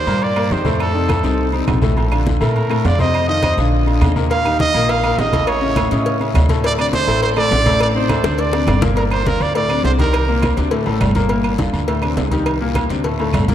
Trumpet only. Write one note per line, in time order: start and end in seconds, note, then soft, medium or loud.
0.00 0.25 C5 loud
0.23 0.54 D5 medium
0.52 0.81 C5 medium
0.82 1.22 A4 medium
1.26 1.52 A4 medium
2.43 2.87 A#4 medium
2.86 3.00 D5 medium
3.00 3.27 D#5 loud
3.29 3.56 D#5 loud
4.31 4.58 F5 loud
4.61 4.91 D#5 loud
4.90 5.20 F5 loud
5.18 5.49 D#5 loud
5.48 5.91 C#5 medium
5.92 6.19 C#5 medium
6.66 6.72 D5 loud
6.80 6.86 D5 loud
6.94 7.21 C5 loud
7.23 7.30 C5 loud
7.37 7.78 D5 loud
7.82 7.88 D5 loud
7.96 8.41 C5 medium
8.40 8.83 D5 loud
8.97 9.04 A#4 medium
9.12 9.29 C5 loud
9.27 9.43 A#4 loud
9.42 9.56 D5 medium
9.56 9.83 D5 loud
9.85 9.92 C5 medium
10.00 10.54 A#4 medium